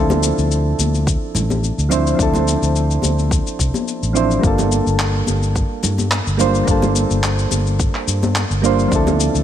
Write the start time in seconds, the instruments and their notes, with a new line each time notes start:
Already playing: fingered electric bass D2, synth keys F3 C4 D4 E4
0.00 synth keys A4
0.10 high conga, low conga, cabasa
0.23 cabasa
0.38 fingered electric bass D2, cabasa
0.51 cabasa
0.79 fingered electric bass D2, high conga, cabasa
0.95 cabasa
1.07 kick, cabasa
1.35 fingered electric bass A1, low conga, cabasa
1.50 high conga, cabasa
1.64 cabasa
1.78 fingered electric bass D2, cabasa
1.89 synth keys F3 C4 D4 E4 C5, low conga, cabasa
2.07 cabasa
2.15 synth keys F3 C4 D4
2.19 fingered electric bass D2, synth keys E4 A4, kick, cabasa
2.34 high conga, low conga, cabasa
2.48 cabasa
2.62 fingered electric bass D2, cabasa
2.76 cabasa
2.91 cabasa
3.02 fingered electric bass D2, high conga, cabasa
3.19 cabasa
3.31 kick, cabasa
3.47 cabasa
3.59 fingered electric bass C2, kick, cabasa
3.74 high conga, cabasa
3.88 cabasa
4.03 fingered electric bass A1, cabasa
4.13 synth keys F3 C4 D4 E4 C5, cabasa
4.31 cabasa
4.39 synth keys G3 A#3 D4
4.43 fingered electric bass G1, synth keys F4 A4, kick, cabasa
4.58 high conga, low conga, cabasa
4.72 cabasa
4.87 fingered electric bass G1, cabasa
4.99 clap, cabasa
5.27 fingered electric bass G1, high conga, cabasa
5.43 cabasa
5.56 kick, cabasa
5.83 fingered electric bass G2, low conga, cabasa
5.98 high conga, cabasa
6.11 clap, cabasa
6.27 fingered electric bass G1, cabasa
6.37 synth keys G3 A#3 D4 F4 C5, low conga, cabasa
6.55 cabasa
6.63 synth keys G3 A#3 D4
6.68 fingered electric bass G1, synth keys F4 A4, kick, cabasa
6.82 high conga, low conga, cabasa
6.96 cabasa
7.11 fingered electric bass G1, cabasa
7.23 clap, cabasa
7.39 cabasa
7.51 fingered electric bass G1, high conga, cabasa
7.67 cabasa
7.79 kick, cabasa
7.95 clap
8.07 fingered electric bass G2, cabasa
8.23 high conga, cabasa
8.35 clap, cabasa
8.50 fingered electric bass G1, cabasa
8.62 synth keys G3 A#3 D4 F4, cabasa
8.66 synth keys C5
8.79 cabasa
8.88 fingered electric bass D2, synth keys F3 C4 D4, kick
8.92 synth keys E4 A4, cabasa
9.07 high conga, low conga, cabasa
9.20 cabasa
9.35 fingered electric bass D2, cabasa